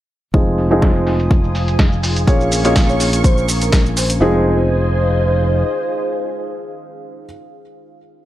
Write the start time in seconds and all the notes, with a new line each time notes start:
0.34 F1 F3 G#3 C4 D#4 F4 G#4 C5 G#5 D#6, kick, closed hi-hat, cabasa
0.47 cabasa
0.58 open hi-hat, cabasa
0.64 G#4
0.71 F3 G#3 C4 D#4 G#4, closed hi-hat, cabasa
0.82 kick, snare, closed hi-hat
0.87 F5
0.96 cabasa
1.07 open hi-hat, cabasa
1.20 closed hi-hat, cabasa
1.31 kick, closed hi-hat, cabasa
1.44 cabasa
1.55 open hi-hat, cabasa
1.68 closed hi-hat, cabasa
1.79 kick, snare, closed hi-hat, cabasa
1.92 cabasa
2.03 open hi-hat, cabasa
2.16 closed hi-hat, cabasa
2.27 A#1 A#3 C#4 F4 G#4 A#4 C#5 C#6, kick, closed hi-hat, cabasa
2.41 cabasa
2.52 open hi-hat, cabasa
2.64 A#3 C#4 F4 G#4 C#5 D#5, closed hi-hat, cabasa
2.76 kick, snare, closed hi-hat, cabasa
2.89 C#5, cabasa
3.00 open hi-hat, cabasa
3.13 closed hi-hat, cabasa
3.24 C5, kick, closed hi-hat, cabasa
3.38 cabasa
3.49 open hi-hat, cabasa
3.61 A#4, closed hi-hat, cabasa
3.73 kick, snare, closed hi-hat, cabasa
3.86 cabasa
3.97 C5, open hi-hat, cabasa
4.10 closed hi-hat, cabasa
4.20 F1 F3 G#3 C4 D#4 F4 G#4 C5 D#5 G#5
4.29 G#4
4.36 F5